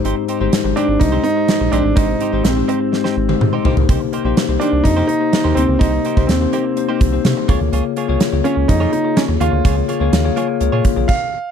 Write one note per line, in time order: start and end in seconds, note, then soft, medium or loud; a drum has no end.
0.00 0.49 G#2 medium
0.00 0.30 G#3 medium
0.00 0.31 D#4 medium
0.00 0.31 G4 medium
0.00 0.31 C5 loud
0.04 0.14 G#1 loud
0.04 0.24 C4 medium
0.04 0.16 D#4 medium
0.04 0.16 G4 medium
0.04 0.15 C5 medium
0.04 closed hi-hat medium
0.17 muted clean electric guitar stroke soft
0.28 0.41 C4 medium
0.28 0.40 D#4 medium
0.28 0.40 G4 medium
0.28 0.39 C5 medium
0.28 closed hi-hat medium
0.40 0.50 G1 medium
0.40 0.60 G#3 medium
0.40 0.51 C4 medium
0.40 0.61 D#4 medium
0.40 0.52 D#4 soft
0.40 0.61 G4 medium
0.40 0.52 G4 medium
0.40 0.52 C5 medium
0.40 0.61 C5 loud
0.53 muted clean electric guitar stroke soft
0.53 snare loud
0.53 closed hi-hat medium
0.64 0.74 G#1 medium
0.64 0.94 G#3 medium
0.64 0.95 D#4 medium
0.64 0.95 G4 medium
0.64 0.95 C5 medium
0.64 muted clean electric guitar stroke soft
0.76 0.96 C4 medium
0.76 1.01 D4 medium
0.76 0.88 D#4 medium
0.76 0.88 G4 medium
0.76 0.88 C5 medium
0.76 closed hi-hat medium
0.88 0.98 G#1 medium
1.00 1.19 C2 medium
1.00 1.31 G#3 medium
1.00 1.22 D#4 loud
1.00 1.31 D#4 medium
1.00 1.31 G4 medium
1.00 1.31 C5 medium
1.00 muted clean electric guitar stroke soft
1.00 kick medium
1.00 closed hi-hat medium
1.12 1.23 C4 medium
1.12 1.24 D#4 medium
1.12 1.24 G4 medium
1.12 1.24 C5 medium
1.24 1.74 D#4 loud
1.24 muted clean electric guitar stroke soft
1.24 closed hi-hat medium
1.36 1.66 G#3 medium
1.36 1.67 D#4 medium
1.36 1.67 G4 medium
1.36 1.67 C5 medium
1.36 muted clean electric guitar stroke soft
1.48 muted clean electric guitar stroke soft
1.48 snare loud
1.48 closed hi-hat medium
1.61 1.70 A#1 medium
1.61 muted clean electric guitar stroke soft
1.72 1.82 A#1 medium
1.72 2.41 G#2 medium
1.72 1.93 G#3 medium
1.72 1.92 C4 medium
1.72 1.97 D4 medium
1.72 1.93 D#4 medium
1.72 1.84 D#4 medium
1.72 1.93 G4 medium
1.72 1.84 G4 medium
1.72 1.93 C5 medium
1.72 1.84 C5 medium
1.72 closed hi-hat medium
1.85 1.94 A1 medium
1.85 muted clean electric guitar stroke soft
1.96 2.15 G#1 loud
1.96 2.27 G#3 medium
1.96 2.16 C4 medium
1.96 2.46 D#4 medium
1.96 2.08 D#4 medium
1.96 2.27 D#4 medium
1.96 2.27 G4 medium
1.96 2.08 G4 medium
1.96 2.27 C5 medium
1.96 2.07 C5 medium
1.96 kick loud
1.96 closed hi-hat medium
2.09 muted clean electric guitar stroke soft
2.20 2.32 C4 medium
2.20 2.32 D#4 medium
2.20 2.32 G4 medium
2.20 2.31 C5 medium
2.20 closed hi-hat medium
2.32 2.42 G#1 medium
2.32 2.53 G#3 medium
2.32 2.43 C4 medium
2.32 2.53 D#4 medium
2.32 2.44 D#4 medium
2.32 2.44 G4 medium
2.32 2.53 G4 medium
2.32 2.44 C5 medium
2.32 2.53 C5 medium
2.44 2.63 A#1 medium
2.44 3.60 C4 medium
2.44 snare loud
2.44 closed hi-hat medium
2.56 2.87 G#3 medium
2.56 2.87 D#4 medium
2.56 2.87 G4 medium
2.56 2.87 C5 medium
2.56 muted clean electric guitar stroke soft
2.68 2.88 C4 medium
2.68 2.80 D#4 medium
2.68 2.80 G4 medium
2.68 2.79 C5 medium
2.68 closed hi-hat medium
2.80 muted clean electric guitar stroke soft
2.92 3.23 G#3 medium
2.92 3.23 D#4 medium
2.92 3.23 G4 medium
2.92 3.23 C5 medium
2.92 muted clean electric guitar stroke soft
2.92 snare medium
3.04 3.16 C4 medium
3.04 3.16 D#4 medium
3.04 3.16 G4 medium
3.04 3.17 C5 medium
3.04 snare soft
3.17 3.35 G#1 medium
3.17 muted clean electric guitar stroke soft
3.28 3.59 G#3 medium
3.28 3.59 D#4 medium
3.28 3.59 G4 medium
3.28 3.59 C5 medium
3.28 muted clean electric guitar stroke soft
3.28 high tom medium
3.41 3.50 G#2 medium
3.41 muted clean electric guitar stroke soft
3.41 mid tom medium
3.53 3.64 C4 soft
3.53 3.64 D#4 medium
3.53 3.64 G4 medium
3.53 3.65 C5 medium
3.64 3.74 C2 loud
3.64 4.33 C3 medium
3.64 4.14 A#3 medium
3.64 3.84 A#3 medium
3.64 4.15 D#4 medium
3.64 3.77 D#4 medium
3.64 4.15 G4 medium
3.64 3.76 G4 medium
3.64 4.15 C5 medium
3.64 3.76 C5 medium
3.64 floor tom medium
3.77 3.86 C#2 medium
3.77 muted clean electric guitar stroke soft
3.77 floor tom medium
3.89 3.98 C2 loud
3.89 4.08 A#3 medium
3.89 4.00 D#4 medium
3.89 4.00 G4 medium
3.89 4.00 C5 medium
3.89 kick loud
3.89 closed hi-hat medium
4.01 muted clean electric guitar stroke soft
4.13 4.25 A#3 medium
4.13 4.24 D#4 medium
4.13 4.24 G4 medium
4.13 4.23 C5 medium
4.13 closed hi-hat medium
4.24 4.34 A#1 medium
4.24 4.45 A#3 medium
4.24 4.35 A#3 soft
4.24 4.45 D#4 medium
4.24 4.36 D#4 medium
4.24 4.36 G4 soft
4.24 4.45 G4 medium
4.24 4.37 C5 medium
4.24 4.45 C5 medium
4.37 muted clean electric guitar stroke soft
4.37 snare loud
4.37 closed hi-hat medium
4.48 4.58 C2 medium
4.48 4.79 A#3 medium
4.48 4.79 D#4 medium
4.48 4.79 G4 medium
4.48 4.79 C5 medium
4.48 muted clean electric guitar stroke medium
4.60 4.80 A#3 medium
4.60 4.85 D4 medium
4.60 4.73 D#4 medium
4.60 4.72 G4 medium
4.60 4.72 C5 medium
4.60 closed hi-hat medium
4.73 4.82 C2 medium
4.73 muted clean electric guitar stroke soft
4.84 5.03 F2 medium
4.84 5.15 A#3 medium
4.84 5.06 D#4 loud
4.84 5.15 D#4 medium
4.84 5.15 G4 medium
4.84 5.15 C5 medium
4.84 muted clean electric guitar stroke soft
4.84 kick medium
4.84 closed hi-hat medium
4.97 5.08 A#3 medium
4.97 5.08 D#4 medium
4.97 5.08 G4 medium
4.97 5.09 C5 medium
5.07 5.58 D#4 loud
5.07 muted clean electric guitar stroke soft
5.07 closed hi-hat medium
5.20 5.51 A#3 medium
5.20 5.51 D#4 medium
5.20 5.51 G4 medium
5.20 5.51 C5 medium
5.20 muted clean electric guitar stroke soft
5.33 muted clean electric guitar stroke soft
5.33 snare medium
5.33 closed hi-hat medium
5.44 5.54 D#2 medium
5.44 5.55 A#3 medium
5.44 5.56 D#4 medium
5.44 5.56 G4 medium
5.44 5.56 C5 medium
5.55 5.66 D2 medium
5.55 6.25 C3 medium
5.55 5.76 A#3 medium
5.55 5.77 A#3 medium
5.55 5.81 C4 medium
5.55 5.77 D#4 medium
5.55 5.69 D#4 medium
5.55 5.68 G4 medium
5.55 5.77 G4 medium
5.55 5.68 C5 medium
5.55 5.77 C5 medium
5.55 closed hi-hat medium
5.68 5.78 C#2 medium
5.68 muted clean electric guitar stroke soft
5.79 5.99 C2 medium
5.79 6.10 A#3 medium
5.79 6.00 A#3 medium
5.79 6.25 D#4 medium
5.79 6.11 D#4 medium
5.79 5.93 D#4 medium
5.79 6.11 G4 medium
5.79 5.92 G4 medium
5.79 6.11 C5 medium
5.79 5.92 C5 medium
5.79 kick loud
5.79 closed hi-hat medium
5.93 muted clean electric guitar stroke soft
6.05 6.17 A#3 medium
6.05 6.16 D#4 medium
6.05 6.16 G4 medium
6.05 6.15 C5 medium
6.05 closed hi-hat medium
6.16 6.26 C2 loud
6.16 6.37 A#3 medium
6.16 6.28 A#3 soft
6.16 6.37 D#4 medium
6.16 6.28 D#4 medium
6.16 6.37 G4 medium
6.16 6.28 G4 medium
6.16 6.29 C5 medium
6.16 6.37 C5 medium
6.16 kick medium
6.27 6.47 D#2 medium
6.27 7.44 C4 medium
6.27 muted clean electric guitar stroke soft
6.27 snare loud
6.27 closed hi-hat medium
6.40 6.70 A#3 medium
6.40 6.71 D#4 medium
6.40 6.71 G4 medium
6.40 6.71 C5 medium
6.40 muted clean electric guitar stroke soft
6.53 6.72 A#3 medium
6.53 6.65 D#4 medium
6.53 6.64 G4 medium
6.53 6.64 C5 medium
6.53 closed hi-hat medium
6.65 muted clean electric guitar stroke soft
6.76 7.06 A#3 medium
6.76 7.07 D#4 medium
6.76 7.07 G4 medium
6.76 7.07 C5 medium
6.76 muted clean electric guitar stroke soft
6.76 closed hi-hat medium
6.89 7.00 A#3 medium
6.89 7.00 D#4 medium
6.89 7.00 G4 medium
6.89 7.01 C5 medium
7.01 7.19 C2 medium
7.01 muted clean electric guitar stroke soft
7.01 kick medium
7.01 closed hi-hat medium
7.12 7.42 A#3 medium
7.12 7.43 D#4 medium
7.12 7.43 G4 medium
7.12 7.43 C5 medium
7.12 muted clean electric guitar stroke soft
7.25 7.34 C3 loud
7.25 muted clean electric guitar stroke soft
7.25 snare loud
7.25 closed hi-hat medium
7.37 muted clean electric guitar stroke soft
7.48 7.58 C#2 loud
7.48 8.17 C#3 medium
7.48 7.68 A#3 medium
7.48 7.99 A#3 medium
7.48 7.60 F4 medium
7.48 7.99 F4 medium
7.48 7.60 G#4 medium
7.48 7.99 G#4 medium
7.48 7.99 C#5 loud
7.48 7.59 C#5 medium
7.48 kick loud
7.48 closed hi-hat medium
7.61 7.70 D2 medium
7.61 muted clean electric guitar stroke soft
7.73 7.82 C#2 loud
7.73 7.92 A#3 medium
7.73 7.85 F4 medium
7.73 7.84 G#4 medium
7.73 7.84 C#5 medium
7.73 closed hi-hat medium
7.85 muted clean electric guitar stroke soft
7.96 8.09 A#3 medium
7.96 8.08 F4 medium
7.96 8.08 G#4 medium
7.96 8.07 C#5 medium
7.96 closed hi-hat medium
8.08 8.18 C2 medium
8.08 8.28 A#3 medium
8.08 8.19 A#3 soft
8.08 8.29 F4 medium
8.08 8.20 F4 medium
8.08 8.29 G#4 medium
8.08 8.20 G#4 medium
8.08 8.20 C#5 medium
8.08 8.29 C#5 loud
8.20 snare loud
8.20 closed hi-hat medium
8.32 8.42 C#2 medium
8.32 8.62 A#3 medium
8.32 8.63 F4 medium
8.32 8.63 G#4 medium
8.32 8.63 C#5 medium
8.32 muted clean electric guitar stroke soft
8.44 8.64 A#3 medium
8.44 8.69 C#4 medium
8.44 8.56 F4 medium
8.44 8.56 G#4 medium
8.44 8.55 C#5 medium
8.44 closed hi-hat medium
8.56 8.66 C#2 medium
8.56 muted clean electric guitar stroke soft
8.68 8.87 F2 loud
8.68 8.99 A#3 medium
8.68 8.91 D#4 medium
8.68 8.99 F4 medium
8.68 8.99 G#4 medium
8.68 8.99 C#5 medium
8.68 muted clean electric guitar stroke soft
8.68 kick medium
8.68 closed hi-hat medium
8.80 8.91 A#3 medium
8.80 8.92 F4 medium
8.80 8.92 G#4 medium
8.80 8.92 C#5 medium
8.93 9.17 D#4 medium
8.93 muted clean electric guitar stroke soft
8.93 closed hi-hat medium
9.04 9.35 A#3 medium
9.04 9.35 F4 medium
9.04 9.35 G#4 medium
9.04 9.35 C#5 medium
9.04 muted clean electric guitar stroke soft
9.16 9.22 C#4 medium
9.16 muted clean electric guitar stroke soft
9.16 snare loud
9.16 closed hi-hat medium
9.29 9.38 D#2 medium
9.29 muted clean electric guitar stroke soft
9.40 9.50 D#2 medium
9.40 10.09 C#3 medium
9.40 9.60 A#3 medium
9.40 9.61 F4 medium
9.40 11.05 F4 medium
9.40 9.52 F4 medium
9.40 9.61 G#4 medium
9.40 9.52 G#4 medium
9.40 9.61 C#5 medium
9.40 9.51 C#5 medium
9.40 closed hi-hat medium
9.53 9.62 D2 medium
9.53 muted clean electric guitar stroke soft
9.64 9.83 C#2 loud
9.64 9.94 A#3 medium
9.64 9.84 A#3 medium
9.64 9.94 F4 medium
9.64 9.76 F4 medium
9.64 9.95 G#4 medium
9.64 9.76 G#4 medium
9.64 9.95 C#5 medium
9.64 9.75 C#5 medium
9.64 kick loud
9.64 closed hi-hat medium
9.76 muted clean electric guitar stroke soft
9.88 10.00 A#3 medium
9.88 10.00 F4 medium
9.88 9.99 G#4 medium
9.88 9.99 C#5 medium
9.88 closed hi-hat medium
10.00 10.10 C#2 loud
10.00 10.21 A#3 medium
10.00 10.11 A#3 medium
10.00 10.21 F4 medium
10.00 10.12 F4 soft
10.00 10.12 G#4 medium
10.00 10.21 G#4 medium
10.00 10.12 C#5 medium
10.00 10.21 C#5 medium
10.12 10.31 D#2 loud
10.12 muted clean electric guitar stroke soft
10.12 snare loud
10.12 closed hi-hat medium
10.24 10.54 A#3 medium
10.24 10.55 F4 medium
10.24 10.55 G#4 medium
10.24 10.55 C#5 loud
10.24 muted clean electric guitar stroke soft
10.37 10.56 A#3 medium
10.37 10.48 F4 medium
10.37 10.48 G#4 medium
10.37 10.47 C#5 medium
10.37 closed hi-hat medium
10.48 muted clean electric guitar stroke soft
10.60 10.70 C#2 medium
10.60 10.91 A#3 medium
10.60 10.91 F4 medium
10.60 10.91 G#4 medium
10.60 10.91 C#5 medium
10.60 muted clean electric guitar stroke soft
10.60 closed hi-hat medium
10.72 10.82 A#2 medium
10.72 10.84 A#3 medium
10.72 10.84 F4 medium
10.72 10.84 G#4 medium
10.72 10.84 C#5 medium
10.85 kick medium
10.85 closed hi-hat medium
10.96 11.06 A#1 medium
10.96 11.08 A#3 medium
10.96 11.09 F4 medium
10.96 11.09 G#4 medium
10.96 11.09 C#5 medium
10.96 muted clean electric guitar stroke soft
11.08 11.51 F5 loud
11.08 kick medium
11.08 crash medium